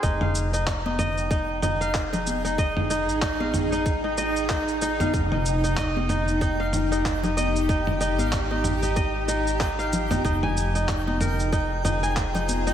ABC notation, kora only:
X:1
M:4/4
L:1/16
Q:"Swing 16ths" 1/4=94
K:Fm
V:1 name="Kora"
E f2 E z E e z E2 E f2 E z E | e z E2 E f2 E z E e z E2 E f- | f E z E e z E2 E f2 E z E e z | E2 E f2 E z E e z E2 E f2 E |
E a2 E z E B2 E2 E a2 E z E |]